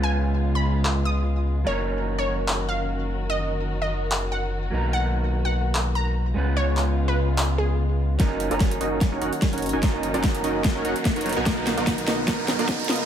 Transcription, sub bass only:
X:1
M:4/4
L:1/16
Q:"Swing 16ths" 1/4=147
K:F#
V:1 name="Sub bass" clef=bass
C,,16 | F,,,16- | F,,,12- F,,,2 B,,,2- | B,,,12- B,,,2 C,,2- |
C,,16 | F,,,3 F,,,3 F,,,3 F,,, F,,, z2 F,,,2 F,,, | F,,,3 F,,,3 F,,,3 F,,, F,,, z2 F,,,2 B,,, | B,,,3 B,,,3 B,,,2 B,,,3 B,,,3 C,,2 |]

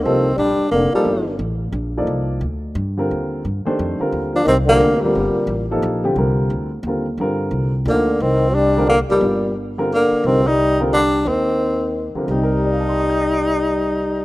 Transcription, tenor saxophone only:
X:1
M:3/4
L:1/8
Q:"Swing" 1/4=176
K:Cdor
V:1 name="Tenor saxophone"
C2 D2 B, G,- | G,2 z4 | z6 | z6 |
z D C B,2 G,- | G,3 z3 | z6 | z4 B,2 |
C2 D2 B, G,- | G,2 z2 B,2 | C E2 z D2 | C4- C z |
E6- | E6 |]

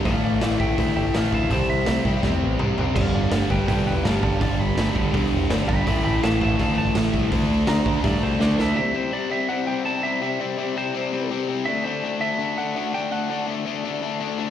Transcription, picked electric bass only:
X:1
M:4/4
L:1/8
Q:1/4=165
K:Clyd
V:1 name="Picked electric bass" clef=bass
A,,, A,,, A,,, A,,, D,, G,,, A,,, D,, | C,, C,, C,, C,, E,, A,,, C,, C,, | G,,, G,,, G,,, G,,, C,, E,,, G,,, G,,, | G,,, G,,, G,,, G,,, C,, E,,, G,,, G,,, |
A,,, A,,, A,,, A,,, D,, G,,, A,,, C,, | D,, D,, D,, D,, G,, C,, D,, D,, | z8 | z8 |
z8 | z8 |]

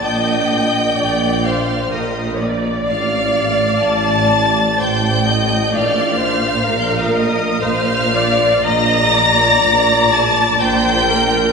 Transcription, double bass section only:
X:1
M:3/4
L:1/8
Q:1/4=63
K:Bb
V:1 name="Double bass section" clef=bass
B,,,2 B,,,2 B,,,2 | A,,,2 A,,,2 A,,,2 | B,,,2 B,,,2 B,,,2 | B,,,2 B,,,2 B,,,2 |]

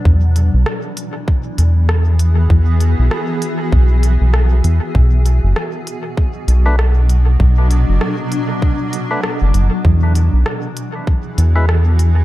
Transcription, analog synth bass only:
X:1
M:4/4
L:1/16
Q:"Swing 16ths" 1/4=98
K:Emix
V:1 name="Analog synth bass" clef=bass
E,,3 B,,, z6 E,,6 | E,,3 B,,, z4 B,,,3 B,,,3 E,, z | B,,,3 F,,, z6 B,,,6 | B,,,3 F,,, z8 z F,,, F,,, z |
E,,3 B,,, z6 E,,6 |]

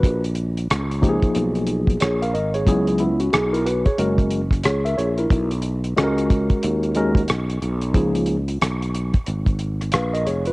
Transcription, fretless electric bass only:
X:1
M:4/4
L:1/16
Q:"Swing 16ths" 1/4=91
K:C#mix
V:1 name="Fretless electric bass" clef=bass
A,,,4 C,,3 z B,,,4 A,,,2 G,,,2 | C,,4 B,,,3 z F,,,4 C,,2 A,,,2 | B,,,4 C,,3 z D,,4 B,,,2 B,,,2 | C,,4 B,,,3 z G,,,4 A,,,2 E,,,2 |]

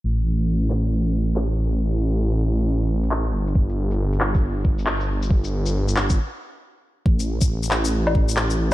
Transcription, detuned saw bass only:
X:1
M:4/4
L:1/8
Q:"Swing 16ths" 1/4=137
K:Gmix
V:1 name="Detuned saw bass" clef=bass
A,,,3 A,,,4 A,,,- | A,,,3 A,,,4 G,,, | G,,,3 G,,,4 G,,,- | G,,,3 G,,, z4 |
A,,,3 A,,,4 A,,, |]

